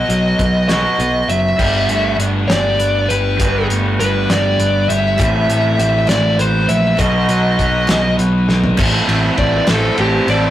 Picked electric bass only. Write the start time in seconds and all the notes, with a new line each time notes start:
0.09 B1
0.39 B1
0.99 B1
1.28 F#1
1.59 G1
1.89 G1
2.17 G1
2.48 G1
2.78 G1
3.09 G1
3.40 G1
3.69 G1
4.00 G1
4.29 G1
4.59 G1
4.89 G1
5.20 A1
5.48 A1
5.78 A1
6.08 A1
6.38 A1
6.69 A#1
6.99 B1
7.28 B1
7.59 B1
7.88 B1
8.18 B1
8.48 B1
8.79 A1
9.07 A1
9.38 A1
9.68 A1
9.98 A1
10.27 A1